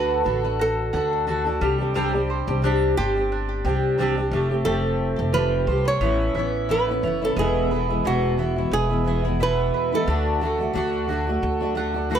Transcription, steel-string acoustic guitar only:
0.00 0.22 D3 medium
0.00 0.23 D4 medium
0.00 0.24 F#4 medium
0.00 0.25 A4 medium
0.24 0.43 D3 medium
0.24 0.44 D4 medium
0.24 0.43 F#4 medium
0.24 0.42 A4 medium
0.43 0.93 D4 soft
0.43 0.94 F#4 soft
0.43 0.93 A4 soft
0.93 1.26 D3 medium
0.93 1.26 D4 medium
0.93 1.27 F#4 medium
0.93 1.27 A4 medium
1.27 1.46 D3 medium
1.27 1.46 D4 medium
1.27 1.45 F#4 medium
1.27 1.44 A4 medium
1.45 1.61 D4 soft
1.45 1.62 F#4 medium
1.45 1.61 A4 medium
1.61 1.80 G3 medium
1.61 1.80 C4 medium
1.61 1.79 D4 medium
1.61 1.77 G4 medium
1.78 1.94 C4 medium
1.78 1.94 D4 medium
1.78 1.95 G4 medium
1.94 2.14 C3 medium
1.94 2.14 G3 medium
1.94 2.14 C4 medium
1.94 2.14 D4 medium
1.94 2.12 G4 medium
2.13 2.48 C4 soft
2.13 2.47 D4 soft
2.13 2.46 G4 medium
2.47 2.63 C4 soft
2.47 2.63 D4 medium
2.47 2.63 G4 medium
2.62 2.97 C3 medium
2.62 2.95 G3 medium
2.62 2.96 C4 medium
2.62 2.97 D4 medium
2.62 2.97 G4 medium
2.96 3.15 G3 medium
2.96 3.16 C4 medium
2.96 3.16 D4 medium
2.96 3.14 G4 medium
3.15 3.64 C4 soft
3.15 3.65 D4 soft
3.15 3.65 G4 soft
3.64 3.97 G3 medium
3.64 3.98 C4 medium
3.64 3.98 D4 medium
3.64 3.99 G4 medium
3.98 4.17 C3 medium
3.98 4.17 G3 medium
3.98 4.17 C4 medium
3.98 4.16 D4 medium
3.98 4.15 G4 medium
4.16 4.32 C4 soft
4.16 4.33 D4 medium
4.16 4.32 G4 soft
4.32 4.51 F3 medium
4.32 4.51 A3 medium
4.32 4.50 C4 medium
4.32 4.48 G4 medium
4.49 4.65 A3 soft
4.49 4.65 C4 soft
4.49 4.65 G4 soft
4.65 5.18 F3 medium
4.65 5.19 A3 medium
4.65 5.18 C4 medium
4.65 5.16 G4 medium
5.18 5.32 A3 soft
5.18 5.33 C4 soft
5.18 5.34 G4 soft
5.32 5.66 F3 medium
5.32 5.67 A3 medium
5.32 5.67 C4 medium
5.32 5.68 G4 medium
5.67 6.01 F3 medium
5.67 6.01 A3 medium
5.67 6.02 C4 medium
5.67 6.02 G4 medium
6.01 6.35 A2 medium
6.01 6.34 E3 medium
6.01 6.35 B3 medium
6.01 6.36 C#4 medium
6.01 6.36 E4 medium
6.35 6.68 E3 medium
6.35 6.69 B3 medium
6.35 6.69 C#4 medium
6.35 6.69 E4 medium
6.69 6.88 A2 medium
6.69 6.88 E3 medium
6.69 6.89 B3 medium
6.69 6.89 C#4 medium
6.69 6.88 E4 medium
6.89 7.02 B3 soft
6.89 7.03 C#4 medium
6.89 7.04 E4 medium
7.02 7.22 E3 medium
7.02 7.22 B3 medium
7.02 7.22 C#4 medium
7.02 7.20 E4 medium
7.22 7.37 B3 soft
7.22 7.38 C#4 medium
7.22 7.37 E4 medium
7.37 7.71 E2 medium
7.37 7.71 B2 medium
7.37 7.69 E3 medium
7.37 7.70 G#3 medium
7.37 7.71 B3 medium
7.37 7.71 E4 medium
7.70 7.89 E3 medium
7.70 7.89 G#3 medium
7.70 7.89 B3 medium
7.70 7.88 E4 medium
7.89 8.04 E3 soft
7.89 8.04 G#3 soft
7.89 8.04 B3 soft
7.89 8.05 E4 medium
8.04 8.39 E2 medium
8.04 8.39 B2 medium
8.04 8.36 E3 medium
8.04 8.37 G#3 medium
8.04 8.38 B3 medium
8.04 8.39 E4 medium
8.37 8.57 E3 soft
8.37 8.57 G#3 medium
8.37 8.56 B3 medium
8.37 8.55 E4 medium
8.56 8.91 E3 soft
8.56 8.90 G#3 soft
8.56 8.89 B3 soft
8.56 8.88 E4 soft
8.89 9.03 E3 soft
8.89 9.04 G#3 soft
8.89 9.05 B3 soft
8.89 9.06 E4 soft
9.05 9.24 E3 medium
9.05 9.24 G#3 medium
9.05 9.24 B3 medium
9.05 9.22 E4 medium
9.23 9.39 E3 soft
9.23 9.40 G#3 soft
9.23 9.40 B3 soft
9.23 9.40 E4 soft
9.40 9.93 E2 medium
9.40 9.93 B2 medium
9.40 9.93 E3 medium
9.40 9.92 G#3 medium
9.40 9.91 B3 medium
9.40 9.91 E4 medium
9.92 10.06 E3 soft
9.92 10.07 G#3 soft
9.92 10.07 B3 soft
9.92 10.08 E4 medium
10.06 10.39 D3 medium
10.06 10.40 A3 medium
10.06 10.41 D4 medium
10.06 10.42 F#4 medium
10.40 10.60 D3 medium
10.40 10.60 A3 medium
10.40 10.58 D4 medium
10.40 10.57 F#4 medium
10.58 10.72 A3 soft
10.58 10.73 D4 soft
10.58 10.74 F#4 medium
10.73 11.06 D3 medium
10.73 11.07 A3 medium
10.73 11.08 D4 medium
10.73 11.09 F#4 medium
11.08 11.27 D3 medium
11.08 11.28 A3 medium
11.08 11.27 D4 medium
11.08 11.26 F#4 medium
11.27 11.62 A3 soft
11.27 11.60 D4 soft
11.27 11.59 F#4 medium
11.60 11.74 A3 soft
11.60 11.75 D4 medium
11.60 11.76 F#4 medium
11.75 11.95 D3 medium
11.75 11.95 A3 medium
11.75 11.94 D4 medium
11.75 11.93 F#4 medium
11.94 12.10 A3 soft
11.94 12.10 D4 soft
11.94 12.10 F#4 medium
12.10 12.20 D3 medium
12.10 12.20 A3 medium
12.10 12.20 D4 medium
12.10 12.20 F#4 medium

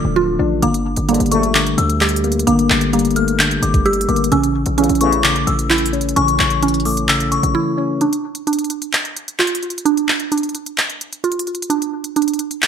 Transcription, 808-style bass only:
0.05 0.38 D1 loud
0.39 0.62 A1 loud
0.62 0.96 G1 loud
0.97 1.19 G1 loud
1.20 1.76 G1 loud
1.78 2.44 D2 loud
2.47 2.69 G1 loud
2.70 3.59 G1 loud
3.62 4.07 G1 loud
4.09 4.31 G1 loud
4.32 4.65 A1 loud
4.66 4.88 A1 loud
4.89 5.45 A1 loud
5.47 6.14 A1 loud
6.16 6.39 A1 loud
6.39 7.39 A1 loud
7.43 7.54 A1 loud

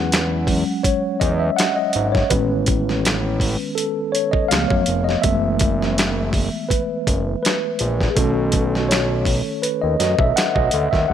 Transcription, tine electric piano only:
0.00 0.45 F#3 soft
0.00 0.45 G#3 soft
0.00 0.45 C#4 medium
0.00 0.81 F#5 loud
0.49 0.82 F#3 soft
0.49 0.82 G#3 soft
0.49 0.82 C#4 soft
0.83 1.00 C#5 medium
1.20 1.39 D#5 medium
1.40 1.58 E5 medium
1.56 1.75 F#5 loud
1.76 2.11 D#5 medium
2.12 2.31 C#5 medium
2.30 3.37 D#3 medium
2.30 3.38 G#3 soft
2.30 3.38 B3 soft
2.30 3.38 C#4 medium
2.30 3.81 B4 medium
3.75 4.14 A4 medium
4.12 4.33 C#5 medium
4.31 4.50 D#5 medium
4.49 5.20 F3 medium
4.49 5.21 A3 medium
4.49 5.21 B3 medium
4.49 4.70 F5 loud
4.68 4.85 C#5 medium
5.04 5.23 D#5 medium
5.22 5.74 E3 soft
5.22 5.74 G#3 soft
5.22 5.74 A3 soft
5.22 5.74 B3 medium
5.22 6.65 E5 medium
6.69 7.41 B4 medium
7.43 8.06 B4 medium
8.10 8.17 G#4 medium
8.16 11.06 D#3 medium
8.16 11.06 A3 soft
8.16 11.07 C#4 medium
8.16 8.85 A4 medium
8.89 9.58 C#5 medium
9.62 9.71 B4 medium
9.81 9.98 D#5 medium
10.00 10.20 D#5 medium
10.19 10.35 E5 medium
10.36 10.54 F#5 loud
10.55 10.93 D#5 medium
10.91 11.09 E5 medium
11.08 11.13 F#3 soft
11.08 11.13 G#3 soft
11.08 11.13 F#5 medium

